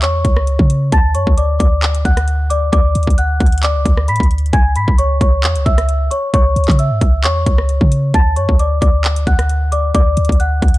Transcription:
0.02 0.24 E2 loud
0.02 0.89 C#5 medium
0.02 0.88 C#6 medium
0.02 clap loud
0.02 closed hi-hat medium
0.25 0.58 C#2 loud
0.25 kick medium
0.25 closed hi-hat medium
0.37 cross-stick loud
0.47 closed hi-hat medium
0.59 0.91 C#3 loud
0.59 kick medium
0.70 closed hi-hat medium
0.92 1.16 D2 loud
0.92 1.10 A5 loud
0.92 1.10 A6 medium
0.92 kick loud
0.92 closed hi-hat medium
1.14 1.26 F#2 loud
1.14 1.32 C#5 medium
1.14 1.32 C#6 medium
1.14 closed hi-hat medium
1.27 1.59 D2 loud
1.27 kick medium
1.37 1.55 D5 medium
1.37 1.55 D6 medium
1.37 closed hi-hat medium
1.59 2.03 D2 loud
1.59 2.02 D5 medium
1.59 2.02 D6 medium
1.59 kick loud
1.59 closed hi-hat medium
1.83 clap loud
1.83 closed hi-hat soft
1.95 closed hi-hat medium
2.05 2.70 D2 loud
2.05 2.48 F#5 medium
2.05 2.47 F#6 medium
2.05 kick medium
2.05 closed hi-hat soft
2.17 cross-stick loud
2.17 closed hi-hat medium
2.28 closed hi-hat medium
2.50 2.68 D5 medium
2.50 2.67 D6 medium
2.50 closed hi-hat medium
2.72 2.94 D2 loud
2.72 3.15 D5 medium
2.72 3.15 D6 loud
2.72 kick loud
2.72 closed hi-hat medium
2.95 3.07 D2 loud
2.95 closed hi-hat medium
2.95 open hi-hat medium
3.03 closed hi-hat medium
3.07 3.39 D2 loud
3.07 kick medium
3.07 closed hi-hat medium
3.18 3.61 F#5 medium
3.18 3.60 F#6 medium
3.18 closed hi-hat medium
3.40 3.76 D2 loud
3.40 kick loud
3.40 closed hi-hat soft
3.46 closed hi-hat medium
3.52 closed hi-hat medium
3.58 closed hi-hat medium
3.63 4.06 D5 medium
3.63 4.05 D6 medium
3.63 clap loud
3.63 closed hi-hat medium
3.75 3.85 C#2 loud
3.85 4.10 D2 loud
3.85 kick medium
3.85 closed hi-hat medium
3.97 cross-stick loud
4.08 4.19 A2 loud
4.08 4.25 B5 medium
4.08 4.26 B6 medium
4.08 closed hi-hat medium
4.16 closed hi-hat medium
4.20 4.52 D2 loud
4.20 kick medium
4.20 closed hi-hat medium
4.31 closed hi-hat medium
4.38 closed hi-hat soft
4.46 closed hi-hat soft
4.53 4.77 C#2 loud
4.53 4.70 G#5 loud
4.53 4.71 G#6 medium
4.53 kick loud
4.53 closed hi-hat medium
4.76 4.87 G#2 medium
4.76 4.93 B5 medium
4.76 4.94 B6 medium
4.76 closed hi-hat medium
4.88 5.20 C#2 loud
4.88 kick medium
4.98 5.16 C#5 medium
4.98 5.16 C#6 medium
4.98 closed hi-hat medium
5.21 5.45 C#2 loud
5.21 5.64 C#5 medium
5.21 5.64 C#6 medium
5.21 kick loud
5.21 closed hi-hat medium
5.44 5.57 E2 loud
5.44 clap loud
5.44 closed hi-hat soft
5.55 5.65 C#2 loud
5.55 closed hi-hat medium
5.66 6.09 C#2 loud
5.66 6.09 E5 medium
5.66 6.08 E6 medium
5.66 kick loud
5.66 closed hi-hat soft
5.78 cross-stick loud
5.78 closed hi-hat medium
5.89 closed hi-hat medium
6.11 6.29 C#5 medium
6.11 6.28 C#6 medium
6.11 closed hi-hat medium
6.34 6.55 C#2 loud
6.34 6.76 C#5 medium
6.34 6.76 C#6 loud
6.34 kick loud
6.34 closed hi-hat medium
6.56 6.68 C#2 loud
6.56 closed hi-hat medium
6.64 closed hi-hat medium
6.68 6.92 C#3 loud
6.68 kick medium
6.68 clap medium
6.68 closed hi-hat medium
6.79 7.21 E5 medium
6.79 7.21 E6 medium
6.79 closed hi-hat medium
6.91 7.01 G#2 loud
7.01 7.25 C#2 loud
7.01 kick loud
7.01 closed hi-hat medium
7.24 7.45 E2 loud
7.24 8.11 C#5 medium
7.24 8.10 C#6 medium
7.24 clap loud
7.24 closed hi-hat medium
7.46 7.80 C#2 loud
7.46 kick medium
7.46 closed hi-hat medium
7.58 cross-stick loud
7.69 closed hi-hat medium
7.81 8.13 C#3 loud
7.81 kick medium
7.92 closed hi-hat medium
8.14 8.38 D2 loud
8.14 8.32 A5 loud
8.14 8.32 A6 medium
8.14 kick loud
8.14 closed hi-hat medium
8.36 8.48 F#2 loud
8.36 8.54 C#5 medium
8.36 8.54 C#6 medium
8.36 closed hi-hat medium
8.49 8.81 D2 loud
8.49 kick medium
8.59 8.77 D5 medium
8.59 8.77 D6 medium
8.59 closed hi-hat medium
8.81 9.25 D2 loud
8.81 9.24 D5 medium
8.81 9.24 D6 medium
8.81 kick loud
8.81 closed hi-hat medium
9.04 clap loud
9.04 closed hi-hat soft
9.16 closed hi-hat medium
9.27 9.92 D2 loud
9.27 9.70 F#5 medium
9.27 9.69 F#6 medium
9.27 kick medium
9.27 closed hi-hat soft
9.39 cross-stick loud
9.39 closed hi-hat medium
9.49 closed hi-hat medium
9.72 9.90 D5 medium
9.72 9.89 D6 medium
9.72 closed hi-hat medium
9.94 10.16 D2 loud
9.94 10.37 D5 medium
9.94 10.37 D6 loud
9.94 kick loud
9.94 closed hi-hat medium
10.17 10.29 D2 loud
10.17 closed hi-hat medium
10.17 open hi-hat medium
10.25 closed hi-hat medium
10.29 10.61 D2 loud
10.29 kick loud
10.29 closed hi-hat medium
10.40 10.78 F#5 medium
10.40 10.78 F#6 medium
10.40 closed hi-hat medium
10.62 10.78 D2 loud
10.62 kick loud
10.62 closed hi-hat soft
10.68 closed hi-hat medium
10.74 closed hi-hat medium

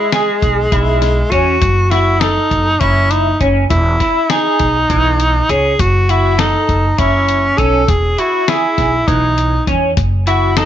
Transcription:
0.00 1.32 G#3 medium
0.12 0.59 G#4 medium
0.12 snare medium
0.12 closed hi-hat medium
0.42 0.67 B1 medium
0.42 kick medium
0.42 closed hi-hat medium
0.72 1.21 B1 medium
0.72 1.18 E4 medium
0.72 kick medium
0.72 closed hi-hat medium
1.02 snare soft
1.02 closed hi-hat medium
1.31 1.56 E2 medium
1.31 1.55 C#4 medium
1.31 1.92 F#4 medium
1.31 kick medium
1.31 closed hi-hat medium
1.61 2.36 F#1 medium
1.61 kick loud
1.61 closed hi-hat medium
1.91 2.22 E4 medium
1.91 2.14 F#4 medium
1.91 snare soft
1.91 closed hi-hat medium
2.21 2.82 D#4 medium
2.21 2.67 A4 medium
2.21 snare medium
2.21 closed hi-hat medium
2.51 2.76 F#1 medium
2.51 kick medium
2.51 closed hi-hat medium
2.80 3.30 F#1 medium
2.80 3.13 C#4 medium
2.80 3.27 E4 medium
2.80 kick medium
2.80 closed hi-hat medium
3.11 3.41 D#4 medium
3.11 closed hi-hat medium
3.41 3.65 F#1 medium
3.41 3.64 C#4 medium
3.41 kick medium
3.41 closed hi-hat soft
3.70 3.95 E1 medium
3.70 4.32 E4 medium
3.70 kick loud
3.70 closed hi-hat medium
4.00 4.23 E4 medium
4.00 kick medium
4.00 snare soft
4.00 closed hi-hat medium
4.30 5.52 D#4 medium
4.30 4.76 G#4 medium
4.30 snare medium
4.30 closed hi-hat medium
4.59 4.85 B1 medium
4.59 kick medium
4.59 closed hi-hat medium
4.90 5.39 B1 medium
4.90 5.36 E3 medium
4.90 kick medium
4.90 closed hi-hat medium
5.20 closed hi-hat medium
5.49 5.74 C#2 medium
5.49 5.72 C#4 medium
5.49 5.82 G#4 medium
5.49 closed hi-hat medium
5.79 6.53 F#1 medium
5.79 6.12 F#4 medium
5.79 kick loud
5.79 closed hi-hat medium
6.09 6.39 E4 medium
6.09 6.32 F#4 medium
6.09 closed hi-hat medium
6.38 7.01 D#4 medium
6.38 6.85 A4 medium
6.38 snare medium
6.38 closed hi-hat medium
6.69 6.93 F#1 medium
6.69 kick medium
6.69 closed hi-hat soft
6.98 7.48 F#1 medium
6.98 7.60 C#4 medium
6.98 7.44 E4 medium
6.98 kick medium
6.98 closed hi-hat medium
7.29 closed hi-hat medium
7.58 7.83 B1 medium
7.58 7.81 C#4 medium
7.58 7.91 A4 medium
7.58 kick medium
7.58 closed hi-hat medium
7.88 8.13 E1 medium
7.88 8.21 G#4 medium
7.88 kick loud
7.88 closed hi-hat medium
8.18 8.41 E4 medium
8.18 8.50 F#4 medium
8.18 closed hi-hat soft
8.48 9.10 E4 medium
8.48 8.94 G#4 medium
8.48 snare medium
8.48 closed hi-hat medium
8.78 9.03 B1 medium
8.78 kick medium
8.78 snare soft
8.78 closed hi-hat soft
9.08 9.57 B1 medium
9.08 9.54 E3 medium
9.08 9.67 D#4 medium
9.08 kick medium
9.08 closed hi-hat medium
9.38 closed hi-hat medium
9.67 9.92 E2 medium
9.67 9.90 C#4 medium
9.67 kick medium
9.67 closed hi-hat soft
9.97 10.65 F#1 medium
9.97 kick loud
9.97 closed hi-hat medium
10.27 10.59 E4 medium
10.27 10.50 F#4 medium
10.27 closed hi-hat medium
10.57 10.65 D#4 medium
10.57 10.65 A4 medium
10.57 snare medium
10.57 closed hi-hat medium

